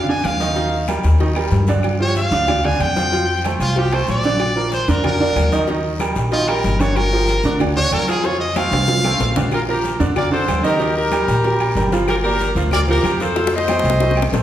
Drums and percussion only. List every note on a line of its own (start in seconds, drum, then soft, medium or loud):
0.08 high conga soft
0.24 cowbell medium
0.24 high conga medium
0.24 low timbale medium
0.24 low agogo medium
0.24 short guiro medium
0.24 claves medium
0.40 cowbell medium
0.40 short guiro medium
0.56 cowbell loud
0.56 high conga soft
0.56 low agogo medium
0.56 long guiro medium
0.72 high conga soft
0.88 cowbell medium
0.88 high conga loud
0.88 low agogo loud
0.88 short guiro medium
0.88 claves medium
1.04 cowbell medium
1.04 low agogo medium
1.04 short guiro medium
1.19 cowbell loud
1.19 high conga soft
1.19 long guiro medium
1.35 high conga soft
1.35 low agogo loud
1.35 claves medium
1.51 cowbell medium
1.51 high conga medium
1.51 low timbale medium
1.51 short guiro medium
1.67 cowbell medium
1.67 high conga medium
1.67 low agogo medium
1.67 short guiro medium
1.83 cowbell loud
1.83 high conga soft
1.83 low agogo loud
1.83 long guiro medium
1.83 claves medium
2.01 high conga soft
2.15 cowbell medium
2.15 high conga medium
2.15 low agogo medium
2.15 short guiro medium
2.31 cowbell medium
2.31 high conga soft
2.31 short guiro medium
2.48 cowbell loud
2.48 high conga soft
2.48 low conga medium
2.48 low agogo loud
2.48 long guiro medium
2.48 claves medium
2.65 high conga soft
2.65 low conga medium
2.80 cowbell medium
2.80 high conga medium
2.80 low agogo loud
2.80 short guiro medium
2.80 claves medium
2.96 cowbell medium
2.96 high conga medium
2.96 short guiro medium
3.12 cowbell loud
3.12 high conga soft
3.12 low agogo medium
3.12 long guiro medium
3.30 high conga soft
3.44 cowbell medium
3.44 high conga loud
3.44 low agogo loud
3.44 short guiro medium
3.44 claves medium
3.60 cowbell medium
3.60 low agogo medium
3.60 short guiro medium
3.76 cowbell loud
3.76 long guiro medium
3.92 low agogo loud
3.92 claves medium
4.07 cowbell medium
4.07 high conga medium
4.07 short guiro medium
4.23 cowbell medium
4.23 high conga medium
4.23 low agogo medium
4.23 short guiro medium
4.39 cowbell loud
4.39 low agogo loud
4.39 long guiro medium
4.39 claves medium
4.72 cowbell medium
4.72 high conga medium
4.72 low agogo medium
4.72 short guiro medium
4.88 cowbell medium
4.88 short guiro medium
5.04 cowbell loud
5.04 high conga soft
5.04 low conga medium
5.04 low agogo loud
5.04 long guiro medium
5.04 claves medium
5.20 high conga soft
5.36 cowbell medium
5.36 high conga medium
5.36 low timbale medium
5.36 low agogo loud
5.36 short guiro medium
5.36 claves medium
5.52 cowbell medium
5.52 high conga medium
5.52 short guiro medium
5.68 cowbell loud
5.68 high conga soft
5.68 low agogo medium
5.68 long guiro medium
5.84 high conga soft
6.00 cowbell medium
6.00 high conga loud
6.00 low agogo loud
6.00 short guiro medium
6.00 claves medium
6.16 cowbell medium
6.16 low agogo medium
6.16 short guiro medium
6.32 cowbell loud
6.48 high conga soft
6.48 low agogo loud
6.48 claves medium
6.64 cowbell medium
6.64 high conga medium
6.64 short guiro medium
6.80 cowbell medium
6.80 high conga medium
6.80 low agogo medium
6.80 short guiro medium
6.95 cowbell loud
6.95 high conga soft
6.95 low agogo loud
6.95 long guiro medium
6.95 claves medium
7.11 high conga soft
7.27 cowbell medium
7.27 high conga medium
7.27 low agogo medium
7.27 short guiro medium
7.43 cowbell medium
7.43 high conga soft
7.43 short guiro medium
7.59 cowbell loud
7.59 high conga soft
7.59 low conga medium
7.59 low agogo loud
7.59 long guiro medium
7.59 claves medium
7.77 high conga soft
7.77 low conga medium
7.91 cowbell medium
7.91 high conga medium
7.91 low agogo loud
7.91 short guiro medium
7.91 claves medium
8.07 cowbell medium
8.07 short guiro medium
8.24 cowbell loud
8.24 high conga soft
8.24 low agogo medium
8.24 long guiro medium
8.40 high conga soft
8.56 cowbell medium
8.56 high bongo medium
8.56 high conga loud
8.56 low agogo loud
8.56 short guiro medium
8.56 claves medium
8.72 cowbell medium
8.72 high bongo medium
8.72 high timbale loud
8.72 low agogo medium
8.72 short guiro medium
8.88 cowbell loud
8.88 low bongo medium
8.88 high conga medium
8.88 high timbale medium
9.04 low bongo medium
9.04 low agogo loud
9.04 claves medium
9.20 cowbell medium
9.20 low bongo loud
9.20 low timbale medium
9.20 short guiro medium
9.36 cowbell medium
9.36 low bongo medium
9.36 low conga loud
9.36 low timbale medium
9.36 low agogo medium
9.36 short guiro medium
9.51 cowbell loud
9.51 high conga soft
9.51 low agogo loud
9.51 long guiro medium
9.51 claves medium
9.68 high conga soft
9.84 cowbell medium
9.84 high conga medium
9.84 low agogo medium
9.84 short guiro medium
10.00 cowbell medium
10.00 high conga soft
10.00 short guiro medium
10.16 cowbell loud
10.16 high conga soft
10.16 low conga medium
10.16 low agogo loud
10.16 long guiro medium
10.16 claves medium
10.32 high conga soft
10.48 cowbell medium
10.48 high conga medium
10.48 low timbale medium
10.48 low agogo loud
10.48 short guiro medium
10.48 claves medium
10.64 cowbell medium
10.64 short guiro medium
10.80 cowbell loud
10.80 high conga soft
10.80 low agogo medium
10.80 long guiro medium
10.96 high conga soft
11.12 cowbell medium
11.12 high conga loud
11.12 low agogo loud
11.12 short guiro medium
11.12 claves medium
11.28 cowbell medium
11.28 low agogo medium
11.28 short guiro medium
11.44 cowbell loud
11.44 high conga soft
11.44 long guiro medium
11.60 high conga soft
11.60 low agogo loud
11.60 claves medium
11.76 cowbell medium
11.76 high conga medium
11.76 short guiro medium
11.92 cowbell medium
11.92 high conga medium
11.92 low agogo medium
11.92 short guiro medium
12.08 cowbell loud
12.08 high conga soft
12.08 low agogo loud
12.08 long guiro medium
12.08 claves medium
12.24 high conga soft
12.40 cowbell medium
12.40 high conga medium
12.40 low agogo medium
12.40 short guiro medium
12.56 cowbell medium
12.56 short guiro medium
12.71 cowbell loud
12.71 high conga soft
12.71 low conga medium
12.71 low agogo loud
12.71 claves medium
12.88 high conga soft
12.88 low conga medium
13.04 cowbell medium
13.04 high conga medium
13.04 low agogo loud
13.04 short guiro medium
13.04 claves medium
13.20 cowbell medium
13.20 short guiro medium
13.36 cowbell loud
13.36 high bongo medium
13.36 high conga soft
13.36 low agogo medium
13.36 long guiro medium
13.47 high bongo loud
13.53 high conga soft
13.58 high bongo loud
13.68 cowbell medium
13.68 high bongo loud
13.68 high conga loud
13.68 low agogo loud
13.68 short guiro medium
13.68 claves medium
13.79 high bongo medium
13.84 cowbell medium
13.84 low agogo medium
13.84 short guiro medium
13.90 low bongo medium
14.00 cowbell loud
14.00 low bongo medium
14.00 high conga soft
14.00 long guiro medium
14.11 low bongo loud
14.16 high conga soft
14.16 low agogo loud
14.16 claves medium
14.22 low bongo loud
14.33 cowbell medium
14.33 low bongo loud
14.33 high conga medium
14.33 low timbale medium
14.33 short guiro medium